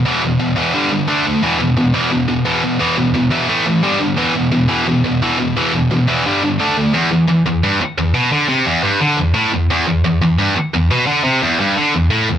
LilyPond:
\new Staff \with { instrumentName = "Distorted electric guitar" } { \clef bass \time 4/4 \key e \minor \tempo 4 = 174 <e, b, e>8 <e, b,>8 <e, b,>8 <e, b, e>8 <g, d g>8 <g, d>8 <d a d'>8 <d a>8 | <e, b, e>8 <e, b,>8 <e, b,>8 <e, b, e>8 <e, b,>8 <e, b,>8 <e, b, e>8 <e, b,>8 | <e, b, e>8 <e, b,>8 <e, b,>8 <e, b, e>8 <a, e a>8 <a, e>8 <g, d g>8 <g, d>8 | <e, b, e>8 <e, b,>8 <e, b,>8 <e, b, e>8 <e, b,>8 <e, b,>8 <e, b, e>8 <e, b,>8 |
<e, b, e>8 <e, b,>8 <e, b,>8 <e, b, e>8 <g, d g>8 <g, d>8 <d a d'>8 <d a>8 | e,8 e,8 e,8 e,8 g,8 r8 e,8 b,8 | d8 c8 e,8 g,8 d8 e,8 a,8 e,8 | e,8 e,8 e,8 e,8 g,8 r8 e,8 b,8 |
d8 c8 e,8 g,8 d8 e,8 a,8 e,8 | }